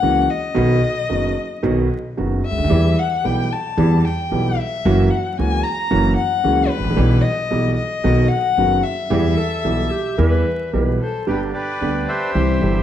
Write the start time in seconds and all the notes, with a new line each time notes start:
Already playing: F#5
0.02 C#2 C#3 E3 A#3 C#4 F#4
0.30 D#5
0.55 B1 B2 D#3 F#3 B3 F#4
1.09 F#1 F#2 D#3 F#3 B3 F#4
1.63 B1 B2 D#3 F#3 B3 F#4
2.17 F#1 F#2 D#3 F#3 B3 F#4
2.46 E5
2.51 C#2
2.58 D2
2.64 D#2
2.70 E2 E3 G3 B3 G4
2.98 F#5
3.24 B1 B2 E3 G3 B3 G4 G5
3.52 A5
3.77 E2 E3 G3 B3 G4
4.05 G5
4.31 B1 B2 E3 G3 B3 G4
4.58 E5
4.85 F#1 F#2 E3 F#3 A#3 C#4 F#4
5.10 F#5
5.37 C#2 C#3 E3 A#3 C#4 F#4 G#5
5.63 A#5
5.91 F#1 F#2 E3 F#3 A#3 C#4 F#4
6.16 F#5
6.44 C#2 C#3 E3 A#3 C#4 F#4
6.68 B4
6.77 G#1
6.84 A1
6.91 A#1
6.97 B1 B2 E3 G3 B3 G4
7.21 D#5
7.51 B1 B2 E3 G3 B3 G4
7.75 D#5
8.04 B1 B2 D#3 F#3 B3 F#4
8.29 F#5
8.57 F#1 F#2 D#3 F#3 B3 F#4
8.83 E5
9.10 E2 E3 G3 B3 G4
9.37 A4
9.64 B1 B2 E3 G3 B3 G4
9.90 G4
10.18 E2 E3 G3 B3 G4 B4
10.73 B1 B2 E3 G3 B3 G4 B4
11.02 A4 C5
11.27 G1 G2 D3 G3 B3 D4 G4 B4
11.53 G4 B4 D5
11.81 D2 D3 G3 B3 G4
12.08 G4 C5 E5
12.35 C2 C3 E3 G3 C4 G4
12.60 G1 G2 E3 G3 C4 G4